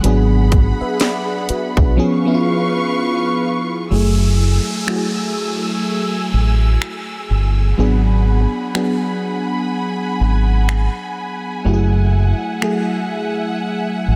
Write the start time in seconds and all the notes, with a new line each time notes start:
0.03 G#1 F#3 B3 D4 G#4 F#5 B5, closed hi-hat
0.52 kick, closed hi-hat
0.81 B4 E5, muted fingered electric bass stroke
1.00 G#4 D5, snare, closed hi-hat
1.49 F#4 B4, muted fingered electric bass stroke, closed hi-hat
1.77 B1 D4 G#4, kick
1.97 F3 B3 C#4 G#4 B4 F5 C#6
2.25 F3 B3 C#4 E4
2.34 F4
3.91 F#1 F#3 A3 E4 G#4 G#5 E6, downlifter
4.87 F#3 A3 E4 F#4, finger snap
4.96 G#4
6.33 A1
6.82 finger snap
7.30 G1
7.78 G#1 F#3 B3 D4 G#4 F#5 G#5 B5
8.74 F#3 B3 D4 G#4, finger snap
10.20 G#1
10.69 finger snap
11.65 F#1 F#3 A3 E4 G4 E5 F#5
11.73 G#4
12.62 F#3 A3 E4 G#4, finger snap
14.08 A1